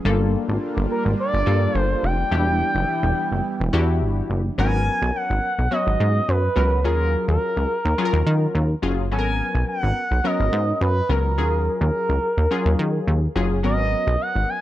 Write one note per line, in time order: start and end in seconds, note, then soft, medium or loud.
0.05 0.36 G1 loud
0.05 0.95 G3 medium
0.05 2.30 G3 medium
0.05 0.95 A#3 medium
0.05 2.30 A#3 medium
0.05 4.54 D4 medium
0.05 2.30 F4 medium
0.05 0.95 F4 medium
0.05 0.95 A4 loud
0.49 0.58 G#1 medium
0.77 0.87 G1 loud
0.91 1.04 A#4 medium
1.05 1.15 G#1 medium
1.20 1.78 D5 loud
1.34 1.43 G1 loud
1.46 1.67 G2 medium
1.46 2.14 G3 medium
1.46 2.14 A#3 medium
1.46 2.15 F4 medium
1.46 2.15 A4 medium
1.75 1.95 G1 loud
1.75 2.06 C5 loud
2.03 2.24 F1 loud
2.03 4.02 G5 loud
2.31 2.63 E1 loud
2.31 4.56 E3 medium
2.31 3.21 G3 medium
2.31 4.56 G3 medium
2.31 4.56 B3 medium
2.31 3.21 D4 medium
2.31 3.21 E4 medium
2.31 4.56 E4 medium
2.31 3.22 G4 medium
2.75 2.84 F#1 loud
3.03 3.13 E1 medium
3.32 3.41 F#1 medium
3.60 3.70 E1 loud
3.73 4.03 E2 loud
3.73 4.41 D4 medium
3.73 4.41 E4 medium
3.73 4.41 F#4 loud
3.73 4.41 G4 loud
4.01 4.22 G1 loud
4.30 4.50 F#1 medium
4.58 4.90 G#1 loud
4.58 5.48 F#3 medium
4.58 4.65 A#3 medium
4.58 5.48 C#4 medium
4.58 5.48 A#4 medium
4.58 5.17 G#5 loud
4.65 5.51 B3 medium
5.02 5.11 B1 loud
5.16 5.74 F#5 medium
5.30 5.40 G#1 medium
5.59 5.68 B1 medium
5.71 6.39 F#3 medium
5.71 6.39 B3 medium
5.71 6.39 C#4 medium
5.71 6.39 F#4 medium
5.71 6.30 D#5 medium
5.87 5.96 G#1 medium
6.00 6.20 G#2 loud
6.28 6.49 F#2 medium
6.28 6.85 B4 loud
6.56 6.87 C#2 medium
6.56 6.79 F#3 medium
6.56 6.79 B3 medium
6.56 6.79 C#4 medium
6.56 6.79 A#4 medium
6.84 7.16 D#2 loud
6.84 7.74 F#3 medium
6.84 7.75 C#4 medium
6.84 7.75 F4 medium
6.84 7.75 G#4 medium
6.84 7.26 A#4 medium
7.28 7.38 D#2 medium
7.28 8.79 A#4 medium
7.57 7.66 C#2 medium
7.85 7.94 D#2 loud
7.98 8.66 F#3 loud
7.98 8.66 C#4 medium
7.98 8.66 F4 medium
7.98 8.05 G#4 medium
8.05 8.69 A#4 loud
8.13 8.23 D#2 loud
8.26 8.47 D#3 loud
8.55 8.75 D#2 loud
8.82 9.12 F#1 medium
8.82 9.05 F#3 medium
8.82 9.05 C#4 medium
8.82 9.06 F4 medium
8.82 9.06 G#4 loud
9.11 9.42 G#1 loud
9.11 10.01 F#3 medium
9.11 10.01 B3 medium
9.11 10.01 C#4 medium
9.11 9.19 A4 medium
9.11 9.64 G#5 loud
9.19 10.05 A#4 medium
9.55 9.64 B1 medium
9.69 10.27 F#5 loud
9.83 9.93 G#1 medium
10.11 10.21 B1 medium
10.24 10.92 F#3 medium
10.24 10.92 B3 medium
10.24 10.92 C#4 medium
10.24 10.92 A#4 medium
10.24 10.82 D#5 loud
10.40 10.49 G#1 medium
10.52 10.73 G#2 loud
10.81 11.01 F#2 medium
10.81 11.12 B4 medium
11.09 11.39 C#2 medium
11.09 11.32 F#3 medium
11.09 11.32 B3 medium
11.09 11.32 C#4 medium
11.09 11.32 A#4 medium
11.09 11.82 A#4 medium
11.38 11.69 D#2 loud
11.38 12.27 F#3 medium
11.38 12.28 C#4 medium
11.38 12.28 F4 medium
11.38 12.28 G#4 medium
11.81 11.91 D#2 medium
11.81 13.32 A#4 medium
12.09 12.19 C#2 medium
12.37 12.47 D#2 medium
12.51 13.18 F#3 medium
12.51 13.19 C#4 medium
12.51 13.19 F4 medium
12.51 13.19 G#4 loud
12.66 12.75 D#2 loud
12.79 12.99 D#3 loud
13.07 13.28 D#2 loud
13.36 13.65 F#1 medium
13.36 13.58 F#3 loud
13.36 13.58 C#4 medium
13.36 13.59 F4 medium
13.36 13.59 G#4 loud
13.63 13.95 G#1 loud
13.63 14.53 F#3 medium
13.63 14.54 B3 medium
13.63 14.54 C#4 medium
13.63 14.54 A#4 medium
13.63 14.23 D#5 loud
14.07 14.17 B1 loud
14.21 14.51 F#5 loud
14.35 14.45 G#1 medium
14.49 14.61 G#5 loud